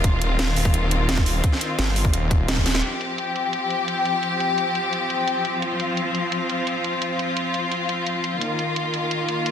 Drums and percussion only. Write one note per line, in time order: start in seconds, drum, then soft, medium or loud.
0.04 kick loud
0.04 closed hi-hat medium
0.22 closed hi-hat medium
0.39 snare loud
0.39 closed hi-hat loud
0.56 open hi-hat medium
0.65 kick loud
0.74 closed hi-hat medium
0.91 closed hi-hat medium
1.09 snare loud
1.09 closed hi-hat medium
1.18 kick loud
1.26 open hi-hat medium
1.44 kick loud
1.44 closed hi-hat loud
1.52 snare soft
1.61 closed hi-hat medium
1.79 snare loud
1.79 closed hi-hat loud
1.96 open hi-hat medium
2.05 kick loud
2.13 closed hi-hat loud
2.31 kick loud
2.31 closed hi-hat medium
2.48 snare loud
2.48 closed hi-hat medium
2.57 kick medium
2.66 snare medium
2.66 open hi-hat medium
2.75 snare medium
2.83 closed hi-hat medium
3.01 closed hi-hat medium
3.18 closed hi-hat medium
3.36 closed hi-hat medium
3.53 closed hi-hat medium
3.70 closed hi-hat medium
3.88 closed hi-hat medium
4.05 closed hi-hat medium
4.23 closed hi-hat medium
4.40 closed hi-hat medium
4.58 closed hi-hat medium
4.75 closed hi-hat medium
4.93 closed hi-hat medium
5.10 closed hi-hat medium
5.28 closed hi-hat medium
5.45 closed hi-hat medium
5.62 closed hi-hat medium
5.80 closed hi-hat medium
5.97 closed hi-hat medium
6.15 closed hi-hat medium
6.32 closed hi-hat medium
6.50 closed hi-hat medium
6.67 closed hi-hat medium
6.84 closed hi-hat medium
7.02 closed hi-hat medium
7.19 closed hi-hat medium
7.37 closed hi-hat medium
7.54 closed hi-hat medium
7.72 closed hi-hat medium
7.89 closed hi-hat medium
8.06 closed hi-hat medium
8.24 closed hi-hat medium
8.41 closed hi-hat medium
8.59 closed hi-hat medium
8.76 closed hi-hat medium
8.94 closed hi-hat medium
9.11 closed hi-hat medium
9.29 closed hi-hat medium
9.46 closed hi-hat medium